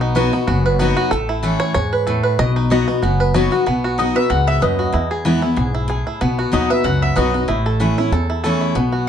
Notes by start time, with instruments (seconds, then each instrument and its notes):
Already playing: upright bass B1, steel-string acoustic guitar B2, five-string banjo B3
0.01 five-string banjo D#4
0.15 steel-string acoustic guitar F#3 B3 D#4 F#4, five-string banjo B4
0.33 five-string banjo B3, steel-string acoustic guitar D#4 F#4
0.47 upright bass F#1, steel-string acoustic guitar F#2, five-string banjo F#4
0.66 five-string banjo B4
0.79 steel-string acoustic guitar F#3 B3 D#4 F#4, five-string banjo B3
0.97 five-string banjo F#4
1.11 upright bass A1, steel-string acoustic guitar A2, five-string banjo A4
1.29 five-string banjo E4
1.43 steel-string acoustic guitar E3 A3 C#4 E4, five-string banjo A4
1.60 five-string banjo C#5
1.74 upright bass E2, steel-string acoustic guitar G#2, five-string banjo C#5
1.93 five-string banjo B4
2.07 steel-string acoustic guitar A2, five-string banjo A4
2.23 five-string banjo B4
2.39 upright bass B1, steel-string acoustic guitar B2, five-string banjo D#5
2.56 five-string banjo D#4
2.70 steel-string acoustic guitar F#3 B3 D#4 F#4, five-string banjo D#5
2.88 five-string banjo B3, steel-string acoustic guitar D#4 F#4
3.02 upright bass F#1, steel-string acoustic guitar F#2, five-string banjo F#4
3.20 five-string banjo B4
3.34 steel-string acoustic guitar F#3 B3 D#4 F#4, five-string banjo B3
3.51 steel-string acoustic guitar D#4 F#4, five-string banjo F#4
3.66 upright bass B1, steel-string acoustic guitar B2, five-string banjo B3
3.84 five-string banjo F#4
3.98 steel-string acoustic guitar F#3 B3 D#4 F#4, five-string banjo D#4, mandolin D#5
4.15 steel-string acoustic guitar D#4 F#4, five-string banjo B4, mandolin E5
4.30 upright bass C#2, steel-string acoustic guitar G#2, five-string banjo F#4, mandolin F#5
4.47 five-string banjo B3, mandolin E5
4.61 upright bass D#2, steel-string acoustic guitar F#2, five-string banjo B4, mandolin D#5
4.79 five-string banjo F#4
4.92 steel-string acoustic guitar E2, upright bass E2, five-string banjo E4
5.11 five-string banjo G#4
5.25 steel-string acoustic guitar E3 G#3 B3 E4, five-string banjo B3
5.41 steel-string acoustic guitar B3 E4, five-string banjo E4
5.56 upright bass B1, steel-string acoustic guitar G#2, five-string banjo G#4
5.75 five-string banjo E4
5.88 steel-string acoustic guitar A2, five-string banjo G#4
6.07 five-string banjo E4
6.21 upright bass B1, steel-string acoustic guitar B2, five-string banjo B3
6.39 five-string banjo F#4
6.52 upright bass D#2, steel-string acoustic guitar F#3 B3 D#4 F#4, five-string banjo D#4, mandolin D#5
6.70 steel-string acoustic guitar D#4 F#4, five-string banjo B4, mandolin E5
6.84 upright bass C#2, steel-string acoustic guitar F#2, five-string banjo F#4, mandolin F#5
7.02 five-string banjo B3, mandolin E5
7.16 upright bass B1, steel-string acoustic guitar F#3 B3 D#4 F#4, five-string banjo B4, mandolin D#5
7.33 steel-string acoustic guitar D#4 F#4, five-string banjo F#4
7.48 upright bass A1, steel-string acoustic guitar A2, five-string banjo E4
7.66 five-string banjo A4
7.80 steel-string acoustic guitar E3 A3 C#4 E4, five-string banjo C#4
7.98 steel-string acoustic guitar C#4 E4, five-string banjo E4
8.11 upright bass E2, steel-string acoustic guitar E2, five-string banjo A4
8.30 five-string banjo E4
8.44 steel-string acoustic guitar E3 A3 C#4 E4, five-string banjo A4
8.61 five-string banjo E4
8.75 upright bass B1, steel-string acoustic guitar B2, five-string banjo B3
8.92 five-string banjo F#4